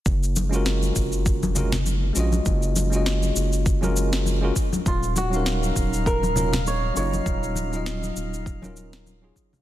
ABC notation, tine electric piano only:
X:1
M:4/4
L:1/16
Q:"Swing 16ths" 1/4=100
K:F#
V:1 name="Tine electric piano"
z3 [G,CEFA]6- [G,CEFA] [G,CEFA] z3 [G,CEFd]2- | [G,CEFd]3 [G,CEFd]6 [G,CEFA]4 [G,CEFA] z2 | z3 [F,CDAe]6- [F,CDAe] [F,CDEA] z3 [F,CDEd]2- | [F,CDEd]3 [F,CDEd]6 [F,CDEA]4 [F,CDEG]3 |]